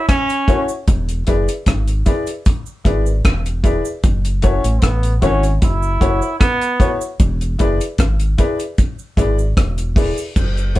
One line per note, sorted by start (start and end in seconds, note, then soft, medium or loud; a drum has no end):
0.09 0.65 C#4 loud
0.09 kick loud
0.09 cross-stick loud
0.09 closed hi-hat loud
0.09 cabasa medium
0.29 closed hi-hat medium
0.29 cabasa medium
0.48 0.68 E4 loud
0.48 0.68 F#4 medium
0.48 0.68 A4 medium
0.48 0.69 C#5 loud
0.48 kick loud
0.48 closed hi-hat medium
0.48 cabasa soft
0.69 cabasa medium
0.88 1.23 E1 loud
0.88 kick loud
0.88 closed hi-hat medium
0.88 cabasa medium
1.09 closed hi-hat medium
1.09 cabasa medium
1.27 1.46 F#1 medium
1.27 1.47 E4 loud
1.27 1.47 G#4 medium
1.27 1.47 B4 medium
1.27 1.48 D5 loud
1.27 kick medium
1.27 closed hi-hat medium
1.27 cabasa soft
1.48 closed hi-hat medium
1.48 cabasa medium
1.66 2.02 G#1 loud
1.66 kick loud
1.66 cross-stick loud
1.66 closed hi-hat medium
1.66 cabasa medium
1.88 closed hi-hat medium
1.88 cabasa medium
2.06 2.26 E4 loud
2.06 2.26 G#4 medium
2.06 2.26 B4 medium
2.06 2.27 D5 loud
2.06 kick medium
2.06 closed hi-hat medium
2.06 cabasa medium
2.27 closed hi-hat soft
2.27 cabasa medium
2.46 kick loud
2.46 closed hi-hat medium
2.46 cabasa medium
2.66 cabasa soft
2.84 3.20 G#1 loud
2.84 3.05 E4 loud
2.84 3.05 G#4 medium
2.84 3.05 B4 medium
2.84 3.05 D5 loud
2.84 kick loud
2.84 closed hi-hat medium
2.84 cabasa soft
3.06 3.14 B4 soft
3.06 3.14 D5 soft
3.06 cabasa medium
3.25 3.79 E1 medium
3.25 kick loud
3.25 cross-stick loud
3.25 closed hi-hat medium
3.25 cabasa medium
3.46 closed hi-hat medium
3.46 cabasa medium
3.63 3.84 E4 loud
3.63 3.84 G#4 medium
3.63 3.84 B4 medium
3.63 3.85 D5 loud
3.63 kick loud
3.63 closed hi-hat medium
3.63 cabasa soft
3.85 cabasa medium
4.04 4.58 F#1 loud
4.04 kick loud
4.04 closed hi-hat medium
4.04 cabasa medium
4.25 closed hi-hat medium
4.25 cabasa medium
4.42 4.83 C#4 medium
4.42 4.63 E4 loud
4.42 4.63 F#4 medium
4.42 4.63 A4 medium
4.42 4.64 C#5 loud
4.42 kick medium
4.42 closed hi-hat medium
4.42 cabasa medium
4.64 4.81 A1 medium
4.64 closed hi-hat medium
4.64 cabasa medium
4.82 5.18 A1 medium
4.82 5.14 B3 loud
4.82 kick loud
4.82 cross-stick loud
4.82 closed hi-hat medium
4.82 cabasa medium
5.03 closed hi-hat medium
5.03 cabasa medium
5.21 5.58 G#1 loud
5.21 5.53 C#4 loud
5.21 5.42 E4 loud
5.21 5.42 F#4 medium
5.21 5.42 A4 medium
5.21 5.43 C#5 loud
5.21 kick medium
5.21 closed hi-hat medium
5.21 cabasa medium
5.43 closed hi-hat soft
5.43 cabasa medium
5.62 5.97 F#1 loud
5.62 6.37 E4 loud
5.62 kick loud
5.62 closed hi-hat medium
5.62 cabasa medium
5.83 cabasa soft
6.00 6.20 F#1 loud
6.00 6.21 E4 loud
6.00 6.21 F#4 medium
6.00 6.21 A4 medium
6.00 6.21 C#5 loud
6.00 kick loud
6.00 closed hi-hat medium
6.00 cabasa soft
6.22 6.30 A4 soft
6.22 6.30 C#5 soft
6.22 cabasa medium
6.40 6.97 B3 loud
6.40 kick loud
6.40 cross-stick loud
6.40 closed hi-hat medium
6.40 cabasa medium
6.61 closed hi-hat soft
6.61 cabasa soft
6.80 7.00 E4 medium
6.80 7.00 F#4 medium
6.80 7.00 A4 medium
6.80 7.01 C#5 loud
6.80 kick loud
6.80 closed hi-hat medium
6.80 cabasa medium
7.01 cabasa medium
7.20 7.55 E1 loud
7.20 kick loud
7.20 closed hi-hat medium
7.20 cabasa medium
7.41 closed hi-hat soft
7.41 cabasa medium
7.59 7.79 F#1 loud
7.59 7.79 E4 loud
7.59 7.79 G#4 medium
7.59 7.79 B4 loud
7.59 7.80 D5 loud
7.59 kick medium
7.59 closed hi-hat medium
7.59 cabasa soft
7.81 closed hi-hat medium
7.81 cabasa medium
7.98 8.34 G#1 medium
7.98 kick loud
7.98 cross-stick loud
7.98 closed hi-hat medium
7.98 cabasa medium
8.20 closed hi-hat soft
8.20 cabasa medium
8.38 8.58 E4 loud
8.38 8.58 G#4 medium
8.38 8.59 B4 medium
8.38 8.59 D5 loud
8.38 kick medium
8.38 closed hi-hat medium
8.38 cabasa medium
8.60 closed hi-hat soft
8.60 cabasa medium
8.78 kick loud
8.78 closed hi-hat medium
8.78 cabasa medium
8.99 cabasa medium
9.17 9.53 G#1 medium
9.17 9.37 E4 medium
9.17 9.37 G#4 medium
9.17 9.37 B4 medium
9.17 9.37 D5 loud
9.17 kick loud
9.17 closed hi-hat medium
9.17 cabasa medium
9.38 9.46 B4 soft
9.38 9.46 D5 soft
9.38 cabasa medium
9.57 10.11 E1 medium
9.57 kick loud
9.57 cross-stick loud
9.57 closed hi-hat medium
9.57 cabasa medium
9.78 closed hi-hat soft
9.78 cabasa medium
9.96 10.16 E4 medium
9.96 10.16 G#4 medium
9.96 10.17 B4 medium
9.96 10.17 D5 loud
9.96 kick loud
9.96 open hi-hat medium
9.96 cabasa soft
10.18 cabasa medium
10.36 10.79 F#1 medium
10.36 kick loud
10.36 crash medium
10.36 cabasa medium
10.57 closed hi-hat soft
10.57 cabasa medium
10.75 10.79 E4 medium
10.75 10.79 F#4 medium
10.75 10.79 A4 medium
10.75 10.79 C#5 medium
10.75 closed hi-hat medium
10.75 cabasa soft